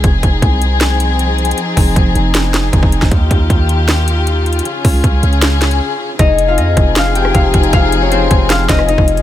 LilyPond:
<<
  \new Staff \with { instrumentName = "Harp" } { \time 4/4 \key f \minor \tempo 4 = 156 r1 | r1 | r1 | r1 |
<ees' ees''>8. <f' f''>16 <ees' ees''>4 <f' f''>8 <g' g''>8 <f' f''>4 | <f' f''>8. <des' des''>16 <c' c''>4 <f' f''>8 <ees' ees''>8 <ees' ees''>4 | }
  \new Staff \with { instrumentName = "String section" } { \time 4/4 \key f \minor << { <f c' aes'>1~ | <f c' aes'>1 | <ees g'>1 | <des des' aes'>1 |
<f c' aes'>1~ | <f c' aes'>1 | } \\ { ees'1~ | ees'1 | f'1~ | f'1 |
ees'1~ | ees'1 | } >> }
  \new Staff \with { instrumentName = "808-style bass" } { \clef bass \time 4/4 \key f \minor f,,8 f,,8 c,2. | r8 f,,8 f,,8 f,,4. f,,16 f,,8 f,,16 | ees,8 ees,8 ees,2. | r8 des,8 des,8 des,4. r4 |
f,,4 f,8 f,,4. f,,8 f,,8 | f,,4. f,,4 f,,8. f,,8 g,,16 | }
  \new DrumStaff \with { instrumentName = "Drums" } \drummode { \time 4/4 <hh bd>8 <hh bd>8 <hh bd>8 hh8 <hc hh sn>8 hh8 \tuplet 3/2 { hh16 r16 r16 hh16 hh16 hh16 } | hh8 <hho bd>8 <hh bd>8 hh8 <hc hh sn>8 <hc hh sn>8 <hh bd>16 bd16 hh16 <bd sn>16 | <hh bd>8 <hh bd>8 <hh bd>8 hh8 <hc hh sn>8 hh8 \tuplet 3/2 { hh16 r16 r16 hh16 hh16 hh16 } | hh8 <hho bd>8 <hh bd>8 hh16 hh16 <hc hh sn>8 <hc hh sn>16 hh16 r4 |
<hh bd>8 hh8 hh8 <hh bd>8 <hc hh sn>8 hh16 ss16 <hh bd>8 <hh bd>16 hh16 | <hh bd>8 hh8 hh8 <hh bd>8 <hc hh sn>8 <hc hh bd sn>16 ss16 hh16 bd16 hh16 hh16 | }
>>